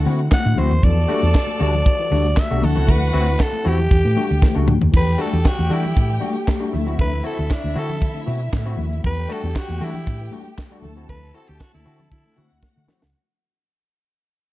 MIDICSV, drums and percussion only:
0, 0, Header, 1, 2, 480
1, 0, Start_track
1, 0, Key_signature, 1, "minor"
1, 0, Tempo, 512821
1, 779, Time_signature, 4, 2, 24, 8
1, 13594, End_track
2, 0, Start_track
2, 0, Title_t, "Drums"
2, 49, Note_on_c, 9, 46, 77
2, 52, Note_on_c, 9, 63, 71
2, 143, Note_off_c, 9, 46, 0
2, 146, Note_off_c, 9, 63, 0
2, 176, Note_on_c, 9, 42, 47
2, 270, Note_off_c, 9, 42, 0
2, 292, Note_on_c, 9, 42, 84
2, 295, Note_on_c, 9, 38, 127
2, 297, Note_on_c, 9, 36, 127
2, 297, Note_on_c, 9, 39, 108
2, 298, Note_on_c, 9, 62, 35
2, 298, Note_on_c, 9, 63, 80
2, 386, Note_off_c, 9, 42, 0
2, 389, Note_off_c, 9, 38, 0
2, 391, Note_off_c, 9, 36, 0
2, 391, Note_off_c, 9, 39, 0
2, 392, Note_off_c, 9, 62, 0
2, 392, Note_off_c, 9, 63, 0
2, 527, Note_on_c, 9, 63, 89
2, 527, Note_on_c, 9, 64, 94
2, 539, Note_on_c, 9, 46, 65
2, 621, Note_off_c, 9, 63, 0
2, 621, Note_off_c, 9, 64, 0
2, 632, Note_off_c, 9, 46, 0
2, 670, Note_on_c, 9, 42, 49
2, 764, Note_off_c, 9, 42, 0
2, 772, Note_on_c, 9, 64, 79
2, 778, Note_on_c, 9, 42, 71
2, 779, Note_on_c, 9, 36, 110
2, 865, Note_off_c, 9, 64, 0
2, 872, Note_off_c, 9, 42, 0
2, 873, Note_off_c, 9, 36, 0
2, 1020, Note_on_c, 9, 46, 70
2, 1020, Note_on_c, 9, 63, 71
2, 1113, Note_off_c, 9, 46, 0
2, 1114, Note_off_c, 9, 63, 0
2, 1144, Note_on_c, 9, 42, 41
2, 1237, Note_off_c, 9, 42, 0
2, 1259, Note_on_c, 9, 42, 69
2, 1261, Note_on_c, 9, 36, 104
2, 1264, Note_on_c, 9, 38, 107
2, 1265, Note_on_c, 9, 39, 89
2, 1352, Note_off_c, 9, 42, 0
2, 1354, Note_off_c, 9, 36, 0
2, 1357, Note_off_c, 9, 38, 0
2, 1359, Note_off_c, 9, 39, 0
2, 1377, Note_on_c, 9, 63, 75
2, 1471, Note_off_c, 9, 63, 0
2, 1496, Note_on_c, 9, 62, 43
2, 1500, Note_on_c, 9, 46, 67
2, 1590, Note_off_c, 9, 62, 0
2, 1594, Note_off_c, 9, 46, 0
2, 1625, Note_on_c, 9, 42, 44
2, 1632, Note_on_c, 9, 64, 84
2, 1719, Note_off_c, 9, 42, 0
2, 1726, Note_off_c, 9, 64, 0
2, 1736, Note_on_c, 9, 42, 67
2, 1741, Note_on_c, 9, 36, 120
2, 1741, Note_on_c, 9, 62, 37
2, 1830, Note_off_c, 9, 42, 0
2, 1835, Note_off_c, 9, 36, 0
2, 1835, Note_off_c, 9, 62, 0
2, 1973, Note_on_c, 9, 63, 73
2, 1978, Note_on_c, 9, 46, 71
2, 2067, Note_off_c, 9, 63, 0
2, 2071, Note_off_c, 9, 46, 0
2, 2107, Note_on_c, 9, 42, 41
2, 2200, Note_off_c, 9, 42, 0
2, 2215, Note_on_c, 9, 42, 90
2, 2219, Note_on_c, 9, 38, 127
2, 2219, Note_on_c, 9, 63, 77
2, 2220, Note_on_c, 9, 36, 127
2, 2220, Note_on_c, 9, 39, 108
2, 2309, Note_off_c, 9, 42, 0
2, 2312, Note_off_c, 9, 38, 0
2, 2313, Note_off_c, 9, 63, 0
2, 2314, Note_off_c, 9, 36, 0
2, 2314, Note_off_c, 9, 39, 0
2, 2455, Note_on_c, 9, 62, 40
2, 2455, Note_on_c, 9, 63, 94
2, 2455, Note_on_c, 9, 64, 82
2, 2461, Note_on_c, 9, 46, 65
2, 2548, Note_off_c, 9, 62, 0
2, 2548, Note_off_c, 9, 63, 0
2, 2548, Note_off_c, 9, 64, 0
2, 2555, Note_off_c, 9, 46, 0
2, 2594, Note_on_c, 9, 42, 50
2, 2688, Note_off_c, 9, 42, 0
2, 2699, Note_on_c, 9, 42, 65
2, 2700, Note_on_c, 9, 36, 106
2, 2703, Note_on_c, 9, 62, 34
2, 2703, Note_on_c, 9, 64, 77
2, 2793, Note_off_c, 9, 42, 0
2, 2794, Note_off_c, 9, 36, 0
2, 2797, Note_off_c, 9, 62, 0
2, 2797, Note_off_c, 9, 64, 0
2, 2942, Note_on_c, 9, 46, 72
2, 2950, Note_on_c, 9, 63, 63
2, 3035, Note_off_c, 9, 46, 0
2, 3043, Note_off_c, 9, 63, 0
2, 3064, Note_on_c, 9, 42, 38
2, 3158, Note_off_c, 9, 42, 0
2, 3176, Note_on_c, 9, 42, 68
2, 3181, Note_on_c, 9, 36, 100
2, 3181, Note_on_c, 9, 38, 115
2, 3183, Note_on_c, 9, 39, 91
2, 3269, Note_off_c, 9, 42, 0
2, 3274, Note_off_c, 9, 38, 0
2, 3275, Note_off_c, 9, 36, 0
2, 3276, Note_off_c, 9, 39, 0
2, 3301, Note_on_c, 9, 63, 66
2, 3395, Note_off_c, 9, 63, 0
2, 3417, Note_on_c, 9, 46, 69
2, 3422, Note_on_c, 9, 62, 41
2, 3511, Note_off_c, 9, 46, 0
2, 3516, Note_off_c, 9, 62, 0
2, 3541, Note_on_c, 9, 42, 49
2, 3548, Note_on_c, 9, 64, 76
2, 3635, Note_off_c, 9, 42, 0
2, 3641, Note_off_c, 9, 64, 0
2, 3657, Note_on_c, 9, 42, 75
2, 3660, Note_on_c, 9, 36, 127
2, 3751, Note_off_c, 9, 42, 0
2, 3754, Note_off_c, 9, 36, 0
2, 3896, Note_on_c, 9, 63, 72
2, 3899, Note_on_c, 9, 46, 67
2, 3989, Note_off_c, 9, 63, 0
2, 3992, Note_off_c, 9, 46, 0
2, 4026, Note_on_c, 9, 42, 46
2, 4120, Note_off_c, 9, 42, 0
2, 4140, Note_on_c, 9, 36, 127
2, 4145, Note_on_c, 9, 62, 41
2, 4145, Note_on_c, 9, 63, 80
2, 4146, Note_on_c, 9, 38, 71
2, 4234, Note_off_c, 9, 36, 0
2, 4239, Note_off_c, 9, 38, 0
2, 4239, Note_off_c, 9, 62, 0
2, 4239, Note_off_c, 9, 63, 0
2, 4374, Note_on_c, 9, 63, 94
2, 4374, Note_on_c, 9, 64, 97
2, 4378, Note_on_c, 9, 45, 97
2, 4468, Note_off_c, 9, 63, 0
2, 4468, Note_off_c, 9, 64, 0
2, 4471, Note_off_c, 9, 45, 0
2, 4507, Note_on_c, 9, 43, 89
2, 4601, Note_off_c, 9, 43, 0
2, 4621, Note_on_c, 9, 36, 119
2, 4621, Note_on_c, 9, 49, 101
2, 4623, Note_on_c, 9, 64, 72
2, 4714, Note_off_c, 9, 36, 0
2, 4715, Note_off_c, 9, 49, 0
2, 4716, Note_off_c, 9, 64, 0
2, 4862, Note_on_c, 9, 46, 67
2, 4866, Note_on_c, 9, 62, 40
2, 4955, Note_off_c, 9, 46, 0
2, 4960, Note_off_c, 9, 62, 0
2, 4988, Note_on_c, 9, 42, 39
2, 5081, Note_off_c, 9, 42, 0
2, 5100, Note_on_c, 9, 42, 68
2, 5103, Note_on_c, 9, 36, 109
2, 5106, Note_on_c, 9, 38, 115
2, 5107, Note_on_c, 9, 39, 94
2, 5109, Note_on_c, 9, 62, 33
2, 5194, Note_off_c, 9, 42, 0
2, 5197, Note_off_c, 9, 36, 0
2, 5199, Note_off_c, 9, 38, 0
2, 5201, Note_off_c, 9, 39, 0
2, 5203, Note_off_c, 9, 62, 0
2, 5227, Note_on_c, 9, 63, 67
2, 5321, Note_off_c, 9, 63, 0
2, 5343, Note_on_c, 9, 46, 65
2, 5437, Note_off_c, 9, 46, 0
2, 5472, Note_on_c, 9, 42, 42
2, 5482, Note_on_c, 9, 64, 78
2, 5566, Note_off_c, 9, 42, 0
2, 5576, Note_off_c, 9, 64, 0
2, 5585, Note_on_c, 9, 36, 127
2, 5585, Note_on_c, 9, 42, 75
2, 5678, Note_off_c, 9, 42, 0
2, 5679, Note_off_c, 9, 36, 0
2, 5824, Note_on_c, 9, 46, 69
2, 5827, Note_on_c, 9, 62, 33
2, 5827, Note_on_c, 9, 63, 73
2, 5918, Note_off_c, 9, 46, 0
2, 5921, Note_off_c, 9, 62, 0
2, 5921, Note_off_c, 9, 63, 0
2, 5951, Note_on_c, 9, 42, 42
2, 6045, Note_off_c, 9, 42, 0
2, 6063, Note_on_c, 9, 42, 84
2, 6064, Note_on_c, 9, 36, 127
2, 6067, Note_on_c, 9, 38, 127
2, 6068, Note_on_c, 9, 39, 104
2, 6068, Note_on_c, 9, 63, 81
2, 6157, Note_off_c, 9, 42, 0
2, 6158, Note_off_c, 9, 36, 0
2, 6160, Note_off_c, 9, 38, 0
2, 6162, Note_off_c, 9, 39, 0
2, 6162, Note_off_c, 9, 63, 0
2, 6306, Note_on_c, 9, 46, 64
2, 6307, Note_on_c, 9, 63, 86
2, 6307, Note_on_c, 9, 64, 84
2, 6400, Note_off_c, 9, 46, 0
2, 6401, Note_off_c, 9, 63, 0
2, 6401, Note_off_c, 9, 64, 0
2, 6440, Note_on_c, 9, 42, 50
2, 6534, Note_off_c, 9, 42, 0
2, 6543, Note_on_c, 9, 42, 64
2, 6544, Note_on_c, 9, 36, 127
2, 6551, Note_on_c, 9, 64, 70
2, 6636, Note_off_c, 9, 42, 0
2, 6638, Note_off_c, 9, 36, 0
2, 6644, Note_off_c, 9, 64, 0
2, 6785, Note_on_c, 9, 46, 66
2, 6879, Note_off_c, 9, 46, 0
2, 6911, Note_on_c, 9, 42, 34
2, 7005, Note_off_c, 9, 42, 0
2, 7021, Note_on_c, 9, 42, 65
2, 7025, Note_on_c, 9, 36, 96
2, 7026, Note_on_c, 9, 38, 114
2, 7028, Note_on_c, 9, 39, 78
2, 7115, Note_off_c, 9, 42, 0
2, 7119, Note_off_c, 9, 36, 0
2, 7120, Note_off_c, 9, 38, 0
2, 7122, Note_off_c, 9, 39, 0
2, 7153, Note_on_c, 9, 63, 69
2, 7247, Note_off_c, 9, 63, 0
2, 7266, Note_on_c, 9, 46, 59
2, 7271, Note_on_c, 9, 62, 45
2, 7359, Note_off_c, 9, 46, 0
2, 7365, Note_off_c, 9, 62, 0
2, 7387, Note_on_c, 9, 42, 44
2, 7392, Note_on_c, 9, 64, 80
2, 7480, Note_off_c, 9, 42, 0
2, 7486, Note_off_c, 9, 64, 0
2, 7503, Note_on_c, 9, 42, 69
2, 7504, Note_on_c, 9, 62, 37
2, 7505, Note_on_c, 9, 36, 126
2, 7597, Note_off_c, 9, 42, 0
2, 7597, Note_off_c, 9, 62, 0
2, 7598, Note_off_c, 9, 36, 0
2, 7737, Note_on_c, 9, 63, 71
2, 7742, Note_on_c, 9, 46, 78
2, 7831, Note_off_c, 9, 63, 0
2, 7836, Note_off_c, 9, 46, 0
2, 7872, Note_on_c, 9, 42, 43
2, 7966, Note_off_c, 9, 42, 0
2, 7983, Note_on_c, 9, 42, 86
2, 7984, Note_on_c, 9, 36, 127
2, 7986, Note_on_c, 9, 38, 127
2, 7986, Note_on_c, 9, 63, 75
2, 7988, Note_on_c, 9, 39, 104
2, 8076, Note_off_c, 9, 42, 0
2, 8078, Note_off_c, 9, 36, 0
2, 8079, Note_off_c, 9, 63, 0
2, 8080, Note_off_c, 9, 38, 0
2, 8082, Note_off_c, 9, 39, 0
2, 8211, Note_on_c, 9, 63, 94
2, 8211, Note_on_c, 9, 64, 95
2, 8228, Note_on_c, 9, 46, 56
2, 8305, Note_off_c, 9, 63, 0
2, 8305, Note_off_c, 9, 64, 0
2, 8322, Note_off_c, 9, 46, 0
2, 8360, Note_on_c, 9, 42, 49
2, 8454, Note_off_c, 9, 42, 0
2, 8460, Note_on_c, 9, 62, 33
2, 8460, Note_on_c, 9, 64, 78
2, 8464, Note_on_c, 9, 36, 109
2, 8465, Note_on_c, 9, 42, 60
2, 8553, Note_off_c, 9, 62, 0
2, 8553, Note_off_c, 9, 64, 0
2, 8558, Note_off_c, 9, 36, 0
2, 8558, Note_off_c, 9, 42, 0
2, 8710, Note_on_c, 9, 46, 67
2, 8710, Note_on_c, 9, 62, 40
2, 8804, Note_off_c, 9, 46, 0
2, 8804, Note_off_c, 9, 62, 0
2, 8831, Note_on_c, 9, 42, 40
2, 8924, Note_off_c, 9, 42, 0
2, 8942, Note_on_c, 9, 42, 66
2, 8945, Note_on_c, 9, 36, 100
2, 8947, Note_on_c, 9, 38, 109
2, 8949, Note_on_c, 9, 39, 83
2, 9035, Note_off_c, 9, 42, 0
2, 9039, Note_off_c, 9, 36, 0
2, 9041, Note_off_c, 9, 38, 0
2, 9042, Note_off_c, 9, 39, 0
2, 9063, Note_on_c, 9, 63, 69
2, 9157, Note_off_c, 9, 63, 0
2, 9182, Note_on_c, 9, 46, 64
2, 9276, Note_off_c, 9, 46, 0
2, 9304, Note_on_c, 9, 64, 77
2, 9309, Note_on_c, 9, 42, 43
2, 9398, Note_off_c, 9, 64, 0
2, 9402, Note_off_c, 9, 42, 0
2, 9426, Note_on_c, 9, 62, 38
2, 9427, Note_on_c, 9, 36, 118
2, 9427, Note_on_c, 9, 42, 75
2, 9520, Note_off_c, 9, 36, 0
2, 9520, Note_off_c, 9, 42, 0
2, 9520, Note_off_c, 9, 62, 0
2, 9654, Note_on_c, 9, 62, 30
2, 9654, Note_on_c, 9, 63, 79
2, 9665, Note_on_c, 9, 46, 72
2, 9747, Note_off_c, 9, 62, 0
2, 9747, Note_off_c, 9, 63, 0
2, 9759, Note_off_c, 9, 46, 0
2, 9794, Note_on_c, 9, 42, 40
2, 9888, Note_off_c, 9, 42, 0
2, 9900, Note_on_c, 9, 63, 78
2, 9904, Note_on_c, 9, 36, 126
2, 9904, Note_on_c, 9, 42, 80
2, 9908, Note_on_c, 9, 38, 123
2, 9909, Note_on_c, 9, 39, 101
2, 9994, Note_off_c, 9, 63, 0
2, 9998, Note_off_c, 9, 36, 0
2, 9998, Note_off_c, 9, 42, 0
2, 10001, Note_off_c, 9, 38, 0
2, 10003, Note_off_c, 9, 39, 0
2, 10131, Note_on_c, 9, 62, 40
2, 10131, Note_on_c, 9, 63, 87
2, 10131, Note_on_c, 9, 64, 92
2, 10145, Note_on_c, 9, 46, 65
2, 10225, Note_off_c, 9, 62, 0
2, 10225, Note_off_c, 9, 63, 0
2, 10225, Note_off_c, 9, 64, 0
2, 10239, Note_off_c, 9, 46, 0
2, 10274, Note_on_c, 9, 42, 47
2, 10368, Note_off_c, 9, 42, 0
2, 10374, Note_on_c, 9, 62, 31
2, 10374, Note_on_c, 9, 64, 73
2, 10382, Note_on_c, 9, 36, 100
2, 10384, Note_on_c, 9, 42, 54
2, 10468, Note_off_c, 9, 62, 0
2, 10468, Note_off_c, 9, 64, 0
2, 10476, Note_off_c, 9, 36, 0
2, 10478, Note_off_c, 9, 42, 0
2, 10626, Note_on_c, 9, 46, 63
2, 10719, Note_off_c, 9, 46, 0
2, 10745, Note_on_c, 9, 42, 34
2, 10839, Note_off_c, 9, 42, 0
2, 10860, Note_on_c, 9, 42, 61
2, 10863, Note_on_c, 9, 36, 107
2, 10865, Note_on_c, 9, 38, 109
2, 10867, Note_on_c, 9, 39, 81
2, 10953, Note_off_c, 9, 42, 0
2, 10957, Note_off_c, 9, 36, 0
2, 10959, Note_off_c, 9, 38, 0
2, 10960, Note_off_c, 9, 39, 0
2, 10979, Note_on_c, 9, 63, 73
2, 11072, Note_off_c, 9, 63, 0
2, 11098, Note_on_c, 9, 46, 63
2, 11192, Note_off_c, 9, 46, 0
2, 11222, Note_on_c, 9, 42, 50
2, 11228, Note_on_c, 9, 64, 79
2, 11315, Note_off_c, 9, 42, 0
2, 11321, Note_off_c, 9, 64, 0
2, 11340, Note_on_c, 9, 42, 76
2, 11341, Note_on_c, 9, 36, 125
2, 11344, Note_on_c, 9, 62, 33
2, 11433, Note_off_c, 9, 42, 0
2, 11435, Note_off_c, 9, 36, 0
2, 11437, Note_off_c, 9, 62, 0
2, 11581, Note_on_c, 9, 46, 68
2, 11581, Note_on_c, 9, 62, 33
2, 11581, Note_on_c, 9, 63, 73
2, 11674, Note_off_c, 9, 46, 0
2, 11675, Note_off_c, 9, 62, 0
2, 11675, Note_off_c, 9, 63, 0
2, 11706, Note_on_c, 9, 42, 41
2, 11800, Note_off_c, 9, 42, 0
2, 11819, Note_on_c, 9, 36, 127
2, 11821, Note_on_c, 9, 38, 70
2, 11824, Note_on_c, 9, 62, 36
2, 11824, Note_on_c, 9, 63, 81
2, 11912, Note_off_c, 9, 36, 0
2, 11915, Note_off_c, 9, 38, 0
2, 11918, Note_off_c, 9, 62, 0
2, 11918, Note_off_c, 9, 63, 0
2, 12053, Note_on_c, 9, 62, 37
2, 12053, Note_on_c, 9, 63, 89
2, 12053, Note_on_c, 9, 64, 87
2, 12060, Note_on_c, 9, 38, 83
2, 12147, Note_off_c, 9, 62, 0
2, 12147, Note_off_c, 9, 63, 0
2, 12147, Note_off_c, 9, 64, 0
2, 12154, Note_off_c, 9, 38, 0
2, 12188, Note_on_c, 9, 38, 92
2, 12282, Note_off_c, 9, 38, 0
2, 13594, End_track
0, 0, End_of_file